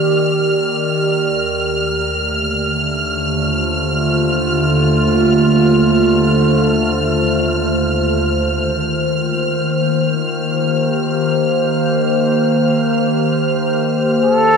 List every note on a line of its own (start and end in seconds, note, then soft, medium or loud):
0.00 1.28 D#3 medium
0.00 1.28 A#3 medium
0.00 4.14 G4 medium
0.00 3.63 D5 medium
0.00 14.57 F6 medium
1.26 8.43 D#2 medium
1.61 8.43 A3 medium
2.08 8.44 D3 medium
3.05 11.12 F4 medium
3.05 14.57 C5 medium
8.44 14.57 D#3 medium
8.59 14.57 A#3 medium
10.29 14.57 G4 medium
14.25 14.57 A4 medium